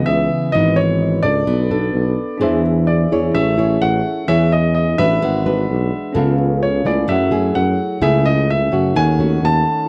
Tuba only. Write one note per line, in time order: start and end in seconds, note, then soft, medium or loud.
0.07 0.29 C#2 medium
0.53 1.20 G#1 medium
1.23 1.45 C#2 medium
1.47 1.91 B1 medium
1.94 2.16 B1 medium
2.40 3.07 E2 medium
3.11 3.33 E2 medium
3.34 3.78 A1 medium
3.81 4.03 A1 medium
4.28 4.94 E2 medium
4.99 5.20 A1 medium
5.22 5.66 G#1 medium
5.69 5.91 B1 loud
6.16 6.82 C#2 medium
6.85 7.07 C#2 medium
7.09 7.52 F#2 medium
7.55 7.77 F#2 loud
8.02 8.68 C#2 medium
8.72 8.94 F#2 medium
8.96 9.40 D#2 medium
9.42 9.64 D#2 loud